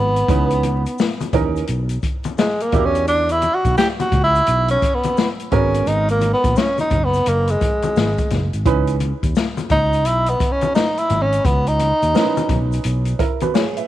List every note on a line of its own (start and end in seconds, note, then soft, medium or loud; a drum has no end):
0.00 0.22 G#1 medium
0.00 1.34 B3 medium
0.16 closed hi-hat soft
0.16 shaker soft
0.28 0.84 C#2 medium
0.28 0.81 E3 medium
0.28 0.82 C#4 medium
0.28 0.82 D#4 medium
0.28 0.82 B4 medium
0.28 kick loud
0.28 closed hi-hat medium
0.28 shaker soft
0.50 closed hi-hat medium
0.50 shaker soft
0.63 closed hi-hat medium
0.63 high conga soft
0.63 shaker soft
0.86 closed hi-hat medium
0.86 shaker soft
0.98 snare loud
0.98 shaker medium
1.20 closed hi-hat medium
1.20 high conga medium
1.20 shaker soft
1.33 1.61 D#2 medium
1.33 1.61 E3 medium
1.33 1.61 C#4 medium
1.33 1.61 D#4 medium
1.33 1.61 A#4 medium
1.33 kick medium
1.33 closed hi-hat medium
1.33 low conga medium
1.33 shaker soft
1.56 closed hi-hat soft
1.56 shaker soft
1.67 1.96 B1 medium
1.67 closed hi-hat medium
1.67 shaker medium
1.89 closed hi-hat medium
1.89 shaker soft
2.03 kick medium
2.03 closed hi-hat medium
2.03 shaker soft
2.24 closed hi-hat soft
2.24 high conga medium
2.24 shaker medium
2.38 2.64 G#3 medium
2.38 snare loud
2.38 shaker medium
2.60 2.87 A#3 medium
2.60 closed hi-hat medium
2.60 shaker soft
2.72 3.46 E2 medium
2.72 3.88 D4 medium
2.72 3.88 E4 medium
2.72 3.88 F#4 medium
2.72 3.88 G4 medium
2.72 kick loud
2.72 closed hi-hat medium
2.72 low conga medium
2.72 shaker soft
2.85 3.07 C#4 medium
2.95 closed hi-hat medium
2.95 shaker soft
3.07 3.33 D4 medium
3.07 closed hi-hat medium
3.07 shaker medium
3.29 3.56 E4 loud
3.29 closed hi-hat medium
3.29 shaker soft
3.42 closed hi-hat medium
3.42 high conga soft
3.42 shaker soft
3.54 3.77 F#4 medium
3.65 3.75 B1 medium
3.65 kick medium
3.65 closed hi-hat medium
3.65 shaker soft
3.78 3.88 G4 loud
3.78 snare loud
3.78 shaker medium
4.00 4.22 F#4 medium
4.00 closed hi-hat medium
4.00 high conga medium
4.00 shaker soft
4.12 4.40 C#2 medium
4.12 kick medium
4.12 closed hi-hat medium
4.12 low conga medium
4.12 shaker soft
4.24 4.67 E4 loud
4.35 closed hi-hat soft
4.35 shaker soft
4.46 4.75 B1 medium
4.46 closed hi-hat medium
4.46 shaker medium
4.68 4.96 C#4 medium
4.68 closed hi-hat medium
4.68 shaker soft
4.82 kick medium
4.82 closed hi-hat medium
4.82 shaker soft
4.94 5.29 B3 medium
5.03 closed hi-hat medium
5.03 high conga medium
5.03 shaker medium
5.17 snare loud
5.17 shaker medium
5.39 closed hi-hat medium
5.39 shaker soft
5.51 5.80 G#1 loud
5.51 6.67 G#3 medium
5.51 6.67 B3 medium
5.51 5.89 C#4 medium
5.51 6.67 F#4 medium
5.51 6.68 A#4 medium
5.51 kick loud
5.51 closed hi-hat medium
5.51 low conga medium
5.51 shaker soft
5.74 closed hi-hat medium
5.74 shaker soft
5.87 6.32 G#1 medium
5.87 6.10 D#4 loud
5.87 closed hi-hat medium
5.87 shaker medium
6.08 6.32 A#3 medium
6.08 closed hi-hat medium
6.08 shaker soft
6.21 closed hi-hat medium
6.21 high conga soft
6.21 shaker soft
6.34 6.58 B3 medium
6.44 6.54 A#1 medium
6.44 kick medium
6.44 closed hi-hat medium
6.44 shaker soft
6.56 6.80 C#4 loud
6.56 snare loud
6.56 shaker medium
6.78 7.06 D#4 medium
6.78 closed hi-hat medium
6.78 high conga medium
6.78 shaker soft
6.90 7.19 F#1 medium
6.90 kick medium
6.90 closed hi-hat medium
6.90 low conga medium
6.90 shaker soft
7.04 7.30 B3 medium
7.14 closed hi-hat soft
7.14 shaker soft
7.26 7.54 F#1 loud
7.26 7.52 A#3 medium
7.26 closed hi-hat medium
7.26 shaker medium
7.47 8.55 G#3 medium
7.47 closed hi-hat medium
7.47 shaker soft
7.61 kick medium
7.61 closed hi-hat medium
7.61 low conga medium
7.61 shaker soft
7.82 closed hi-hat soft
7.82 high conga medium
7.82 shaker medium
7.96 8.14 G#1 medium
7.96 snare loud
7.96 shaker medium
8.18 kick medium
8.18 closed hi-hat soft
8.18 shaker soft
8.30 8.49 F#1 medium
8.30 snare soft
8.30 closed hi-hat medium
8.30 low conga medium
8.30 shaker soft
8.53 8.67 G#1 medium
8.53 closed hi-hat medium
8.53 shaker soft
8.65 9.11 C#2 loud
8.65 8.93 E3 medium
8.65 8.93 C#4 medium
8.65 8.93 D#4 medium
8.65 8.94 B4 loud
8.65 kick loud
8.65 closed hi-hat medium
8.65 shaker soft
8.87 closed hi-hat medium
8.87 shaker soft
9.00 closed hi-hat medium
9.00 high conga soft
9.00 shaker soft
9.23 9.33 D#2 medium
9.23 kick medium
9.23 closed hi-hat medium
9.23 shaker soft
9.35 snare loud
9.35 shaker medium
9.57 closed hi-hat medium
9.57 high conga medium
9.57 shaker soft
9.70 10.06 C#2 medium
9.70 10.08 D#4 loud
9.70 kick medium
9.70 closed hi-hat medium
9.70 low conga medium
9.70 shaker soft
9.93 closed hi-hat soft
9.93 shaker soft
10.05 10.33 B1 medium
10.05 10.31 E4 loud
10.05 closed hi-hat medium
10.05 shaker medium
10.26 10.53 B3 medium
10.26 closed hi-hat medium
10.26 shaker soft
10.40 kick medium
10.40 closed hi-hat medium
10.40 shaker soft
10.52 10.75 C#4 medium
10.61 closed hi-hat medium
10.61 high conga medium
10.61 shaker medium
10.75 11.00 D#4 medium
10.75 snare loud
10.75 shaker medium
10.97 11.23 E4 loud
10.97 closed hi-hat soft
10.97 shaker soft
11.10 11.38 G#1 medium
11.10 closed hi-hat medium
11.10 low conga medium
11.10 shaker soft
11.22 11.46 C#4 medium
11.32 closed hi-hat medium
11.32 shaker soft
11.45 11.90 C#2 loud
11.45 11.70 B3 medium
11.45 kick loud
11.45 closed hi-hat medium
11.45 shaker medium
11.66 12.73 D#4 loud
11.66 closed hi-hat medium
11.66 shaker soft
11.79 closed hi-hat medium
11.79 high conga soft
11.79 shaker soft
12.02 12.12 D#2 medium
12.02 closed hi-hat medium
12.02 shaker soft
12.14 13.14 E3 medium
12.14 13.14 C#4 medium
12.14 13.14 D#4 medium
12.14 12.23 A#4 medium
12.14 snare loud
12.14 shaker medium
12.21 13.18 B4 medium
12.37 closed hi-hat medium
12.37 high conga medium
12.37 shaker medium
12.49 12.77 B1 loud
12.49 kick medium
12.49 closed hi-hat medium
12.49 low conga medium
12.49 shaker soft
12.72 closed hi-hat soft
12.72 shaker soft
12.84 13.12 B1 loud
12.84 closed hi-hat medium
12.84 shaker medium
13.05 closed hi-hat medium
13.05 shaker soft
13.19 13.41 E4 medium
13.19 13.40 A#4 medium
13.19 kick medium
13.19 closed hi-hat medium
13.19 shaker soft
13.40 13.54 F#4 medium
13.40 13.54 B4 medium
13.40 closed hi-hat medium
13.40 high conga medium
13.40 shaker medium
13.54 13.76 G#4 medium
13.54 13.75 C#5 medium
13.54 snare loud
13.54 shaker medium
13.77 13.87 B4 soft
13.77 13.87 E5 medium
13.77 closed hi-hat medium
13.77 shaker soft